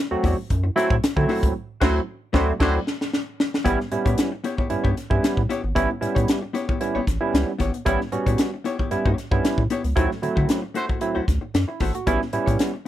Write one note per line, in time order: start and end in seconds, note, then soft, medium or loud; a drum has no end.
0.11 0.16 E2 soft
0.11 0.36 F#3 medium
0.11 0.36 A3 medium
0.11 0.36 C4 medium
0.11 0.36 F#4 loud
0.23 0.35 E2 loud
0.23 0.37 A3 medium
0.23 0.37 E4 medium
0.23 0.37 F#4 medium
0.23 0.37 D5 medium
0.23 kick medium
0.23 snare soft
0.23 open hi-hat soft
0.37 muted hollow-body jazz guitar stroke soft
0.50 0.71 F#2 loud
0.50 kick medium
0.50 closed hi-hat medium
0.64 0.70 C4 soft
0.64 0.70 E4 soft
0.64 muted hollow-body jazz guitar stroke medium
0.76 0.95 F#3 loud
0.76 0.95 A3 loud
0.76 0.93 A3 medium
0.76 0.95 C4 loud
0.76 0.95 E4 loud
0.76 0.91 E4 medium
0.76 0.90 F#4 medium
0.76 0.90 C5 medium
0.76 snare soft
0.76 closed hi-hat medium
0.90 1.00 A2 loud
0.90 muted hollow-body jazz guitar stroke soft
0.90 kick loud
1.04 snare loud
1.04 closed hi-hat medium
1.16 1.26 D3 medium
1.16 1.53 F#3 loud
1.16 1.53 A3 medium
1.16 1.53 C4 medium
1.16 1.53 E4 medium
1.16 muted hollow-body jazz guitar stroke soft
1.16 kick loud
1.29 1.46 A3 medium
1.29 1.43 E4 loud
1.29 1.43 F#4 loud
1.29 1.42 C5 medium
1.29 snare soft
1.29 open hi-hat medium
1.43 1.53 C#2 medium
1.43 muted hollow-body jazz guitar stroke medium
1.43 kick medium
1.43 closed hi-hat medium
1.81 2.00 D2 loud
1.81 1.99 F#3 loud
1.81 1.95 A3 loud
1.81 1.99 A3 loud
1.81 2.01 A3 loud
1.81 2.00 C4 loud
1.81 2.00 E4 loud
1.81 1.95 F#4 loud
1.81 2.00 F#4 loud
1.81 1.95 C5 loud
1.81 2.00 C5 loud
1.81 kick loud
1.81 snare loud
1.81 crash medium
2.33 2.52 D2 loud
2.33 2.52 F#3 loud
2.33 2.52 A3 loud
2.33 2.48 A3 loud
2.33 2.52 C4 loud
2.33 2.52 E4 loud
2.33 2.52 E4 medium
2.33 2.48 F#4 loud
2.33 2.52 F#4 loud
2.33 2.47 C5 medium
2.33 2.53 D5 loud
2.33 kick medium
2.33 snare medium
2.60 2.79 D2 loud
2.60 2.78 F#3 medium
2.60 2.78 A3 medium
2.60 2.74 A3 loud
2.60 2.79 A3 loud
2.60 2.78 C4 medium
2.60 2.78 E4 loud
2.60 2.79 E4 loud
2.60 2.74 F#4 loud
2.60 2.79 F#4 loud
2.60 2.74 C5 loud
2.60 2.79 D5 loud
2.60 kick medium
2.60 snare medium
2.60 crash medium
2.87 snare medium
3.01 snare medium
3.13 snare medium
3.40 snare loud
3.54 snare medium
3.64 3.76 A1 loud
3.64 3.78 G3 loud
3.64 3.82 B3 medium
3.64 3.78 B3 loud
3.64 3.78 C#4 loud
3.64 3.78 E4 loud
3.64 3.79 E4 medium
3.64 3.79 G4 medium
3.64 3.78 C#5 medium
3.64 kick loud
3.64 closed hi-hat medium
3.79 muted hollow-body jazz guitar stroke soft
3.79 snare soft
3.92 3.98 A2 soft
3.92 4.29 G3 medium
3.92 4.29 B3 medium
3.92 4.29 C#4 medium
3.92 4.29 E4 medium
3.92 muted hollow-body jazz guitar stroke soft
3.92 closed hi-hat medium
4.05 4.15 A2 medium
4.05 4.16 B3 medium
4.05 4.16 E4 medium
4.05 4.17 G4 medium
4.05 4.17 C#5 medium
4.05 kick medium
4.05 closed hi-hat medium
4.18 snare loud
4.18 closed hi-hat loud
4.32 muted hollow-body jazz guitar stroke medium
4.44 4.58 B3 medium
4.44 4.57 E4 medium
4.44 4.57 G4 medium
4.44 4.56 C#5 medium
4.44 snare soft
4.44 closed hi-hat medium
4.57 4.69 B3 soft
4.57 4.69 E4 medium
4.57 4.69 G4 medium
4.57 4.70 C#5 medium
4.57 kick medium
4.70 4.77 G2 medium
4.70 4.89 G3 medium
4.70 4.89 B3 medium
4.70 4.89 C#4 medium
4.70 4.89 E4 medium
4.70 closed hi-hat medium
4.84 4.94 G2 loud
4.84 4.96 B3 medium
4.84 4.96 E4 medium
4.84 4.97 G4 medium
4.84 4.97 C#5 medium
4.84 kick medium
4.97 muted hollow-body jazz guitar stroke soft
4.97 snare soft
4.97 closed hi-hat medium
5.10 5.20 G2 loud
5.10 5.41 G3 medium
5.10 5.41 B3 medium
5.10 5.41 C#4 medium
5.10 5.41 E4 medium
5.10 muted hollow-body jazz guitar stroke soft
5.10 kick loud
5.23 muted hollow-body jazz guitar stroke soft
5.23 snare loud
5.23 closed hi-hat medium
5.37 5.47 A2 medium
5.37 muted hollow-body jazz guitar stroke soft
5.37 kick medium
5.49 5.66 B3 medium
5.49 5.63 E4 medium
5.49 5.63 G4 medium
5.49 5.62 C#5 medium
5.49 snare soft
5.49 closed hi-hat medium
5.64 5.73 G#1 medium
5.64 muted hollow-body jazz guitar stroke medium
5.75 5.87 A1 medium
5.75 5.88 G3 medium
5.75 5.88 B3 medium
5.75 5.93 B3 medium
5.75 5.89 C#4 loud
5.75 5.89 E4 loud
5.75 5.90 E4 medium
5.75 5.90 G4 medium
5.75 5.89 C#5 medium
5.75 kick loud
5.75 closed hi-hat medium
5.90 muted hollow-body jazz guitar stroke medium
6.01 6.08 A2 medium
6.01 6.39 G3 medium
6.01 6.39 B3 medium
6.01 6.39 C#4 medium
6.01 6.39 E4 medium
6.01 muted hollow-body jazz guitar stroke soft
6.01 closed hi-hat medium
6.15 6.26 A2 medium
6.15 6.26 B3 medium
6.15 6.26 E4 medium
6.15 6.27 G4 medium
6.15 6.27 C#5 medium
6.15 kick medium
6.15 closed hi-hat soft
6.27 muted hollow-body jazz guitar stroke soft
6.27 snare loud
6.27 closed hi-hat loud
6.42 muted hollow-body jazz guitar stroke medium
6.53 6.68 B3 medium
6.53 6.68 E4 medium
6.53 6.68 G4 medium
6.53 6.66 C#5 medium
6.53 snare soft
6.53 closed hi-hat medium
6.68 6.79 B3 medium
6.68 6.80 E4 medium
6.68 6.80 G4 medium
6.68 6.80 C#5 medium
6.68 kick medium
6.80 7.00 G3 medium
6.80 7.00 B3 medium
6.80 7.00 C#4 medium
6.80 7.00 E4 medium
6.80 muted hollow-body jazz guitar stroke medium
6.80 closed hi-hat medium
6.95 7.00 A1 soft
6.95 7.06 B3 medium
6.95 7.06 E4 medium
6.95 7.07 G4 medium
6.95 7.07 C#5 medium
7.07 7.18 A1 medium
7.07 muted hollow-body jazz guitar stroke soft
7.07 kick medium
7.07 snare soft
7.07 closed hi-hat medium
7.20 7.51 G3 medium
7.20 7.51 B3 medium
7.20 7.51 C#4 medium
7.20 7.51 E4 loud
7.20 muted hollow-body jazz guitar stroke medium
7.33 7.45 C#2 loud
7.33 muted hollow-body jazz guitar stroke soft
7.33 snare loud
7.33 closed hi-hat medium
7.47 muted hollow-body jazz guitar stroke soft
7.58 7.71 G#1 medium
7.58 7.76 B3 medium
7.58 7.73 E4 medium
7.58 7.73 G4 medium
7.58 7.73 C#5 medium
7.58 kick medium
7.58 snare soft
7.58 closed hi-hat medium
7.74 muted hollow-body jazz guitar stroke soft
7.74 closed hi-hat medium
7.85 7.97 A1 loud
7.85 7.99 G3 loud
7.85 7.99 B3 loud
7.85 8.03 B3 medium
7.85 7.99 C#4 medium
7.85 7.99 E4 loud
7.85 8.01 E4 medium
7.85 8.00 G4 medium
7.85 8.00 C#5 medium
7.85 kick loud
7.85 closed hi-hat medium
8.01 muted hollow-body jazz guitar stroke medium
8.01 snare soft
8.12 8.18 A2 soft
8.12 8.50 G3 medium
8.12 8.50 B3 medium
8.12 8.50 C#4 medium
8.12 8.50 F#4 medium
8.12 muted hollow-body jazz guitar stroke soft
8.12 closed hi-hat medium
8.26 8.36 A2 loud
8.26 8.39 B3 medium
8.26 8.39 E4 medium
8.26 8.39 G4 medium
8.26 8.38 C#5 medium
8.26 kick medium
8.26 closed hi-hat medium
8.38 muted hollow-body jazz guitar stroke medium
8.38 snare loud
8.38 closed hi-hat loud
8.54 muted hollow-body jazz guitar stroke soft
8.64 8.78 B3 medium
8.64 8.78 E4 medium
8.64 8.78 G4 medium
8.64 8.77 C#5 medium
8.64 snare soft
8.64 closed hi-hat medium
8.79 8.91 B3 soft
8.79 8.91 E4 medium
8.79 8.91 G4 medium
8.79 8.91 C#5 medium
8.79 kick medium
8.91 8.97 G2 medium
8.91 9.10 G3 medium
8.91 9.10 B3 medium
8.91 9.10 C#4 medium
8.91 9.10 E4 medium
8.91 muted hollow-body jazz guitar stroke soft
8.91 closed hi-hat medium
9.05 9.15 G2 loud
9.05 9.16 B3 medium
9.05 9.17 E4 medium
9.05 9.17 G4 medium
9.05 9.17 C#5 medium
9.05 kick medium
9.18 muted hollow-body jazz guitar stroke soft
9.18 snare soft
9.18 closed hi-hat medium
9.31 9.41 G2 loud
9.31 9.62 G3 medium
9.31 9.62 B3 medium
9.31 9.62 C#4 medium
9.31 9.62 E4 loud
9.31 muted hollow-body jazz guitar stroke medium
9.31 kick loud
9.44 muted hollow-body jazz guitar stroke soft
9.44 snare loud
9.44 closed hi-hat medium
9.58 9.67 A2 medium
9.58 muted hollow-body jazz guitar stroke soft
9.58 kick loud
9.70 9.87 B3 medium
9.70 9.84 E4 medium
9.70 9.84 G4 medium
9.70 9.83 C#5 medium
9.70 snare soft
9.70 closed hi-hat medium
9.84 9.94 C#2 medium
9.84 muted hollow-body jazz guitar stroke medium
9.84 closed hi-hat medium
9.96 10.08 D2 medium
9.96 10.09 F#3 loud
9.96 10.09 A3 loud
9.96 10.17 A3 medium
9.96 10.09 C4 medium
9.96 10.09 E4 loud
9.96 10.10 E4 medium
9.96 10.10 F#4 medium
9.96 10.09 C5 medium
9.96 kick loud
9.96 closed hi-hat medium
10.11 muted hollow-body jazz guitar stroke soft
10.11 snare soft
10.22 10.29 D3 soft
10.22 10.60 F#3 medium
10.22 10.60 A3 medium
10.22 10.60 C4 medium
10.22 10.60 E4 medium
10.22 muted hollow-body jazz guitar stroke soft
10.22 closed hi-hat medium
10.36 10.46 D3 loud
10.36 10.47 A3 medium
10.36 10.48 E4 medium
10.36 10.48 F#4 medium
10.36 10.48 C5 medium
10.36 kick loud
10.49 muted hollow-body jazz guitar stroke soft
10.49 snare loud
10.49 closed hi-hat medium
10.62 muted hollow-body jazz guitar stroke soft
10.74 10.88 A3 medium
10.74 10.84 A3 medium
10.74 10.87 E4 medium
10.74 10.84 F#4 medium
10.74 10.87 F#4 medium
10.74 10.84 C5 loud
10.74 10.87 C5 medium
10.74 snare soft
10.74 closed hi-hat medium
10.88 10.99 A3 soft
10.88 11.00 E4 medium
10.88 11.00 F#4 medium
10.88 11.00 C5 medium
10.88 kick medium
11.00 11.20 F#3 medium
11.00 11.20 A3 medium
11.00 11.20 C4 medium
11.00 11.21 E4 medium
11.00 muted hollow-body jazz guitar stroke medium
11.00 closed hi-hat medium
11.15 11.21 D2 soft
11.15 11.26 A3 medium
11.15 11.26 E4 medium
11.15 11.27 F#4 medium
11.15 11.27 C5 medium
11.27 11.39 D2 loud
11.27 muted hollow-body jazz guitar stroke soft
11.27 kick medium
11.27 snare soft
11.27 closed hi-hat medium
11.41 muted hollow-body jazz guitar stroke medium
11.54 11.65 F#2 medium
11.54 muted hollow-body jazz guitar stroke soft
11.54 snare loud
11.54 closed hi-hat medium
11.68 11.80 E4 medium
11.68 muted hollow-body jazz guitar stroke soft
11.80 11.91 G#1 loud
11.80 11.98 A3 medium
11.80 11.94 E4 medium
11.80 11.93 F#4 medium
11.80 11.94 A4 medium
11.80 11.93 C5 medium
11.80 kick medium
11.80 snare soft
11.80 open hi-hat medium
11.94 12.20 F#4 medium
11.94 muted hollow-body jazz guitar stroke medium
11.94 closed hi-hat medium
12.07 12.18 A1 medium
12.07 12.20 G3 medium
12.07 12.24 B3 medium
12.07 12.20 B3 loud
12.07 12.20 C#4 loud
12.07 12.20 E4 loud
12.07 12.20 E4 medium
12.07 12.19 G4 medium
12.07 12.19 C#5 medium
12.07 kick loud
12.07 closed hi-hat medium
12.20 muted hollow-body jazz guitar stroke soft
12.20 snare soft
12.33 12.39 A2 soft
12.33 12.70 G3 medium
12.33 12.71 B3 medium
12.33 12.71 C#4 medium
12.33 12.71 E4 medium
12.33 muted hollow-body jazz guitar stroke medium
12.33 closed hi-hat medium
12.46 12.57 A2 loud
12.46 12.58 B3 medium
12.46 12.59 E4 medium
12.46 12.59 G4 medium
12.46 12.59 C#5 medium
12.46 kick medium
12.46 closed hi-hat medium
12.59 snare loud
12.59 closed hi-hat loud
12.74 muted hollow-body jazz guitar stroke soft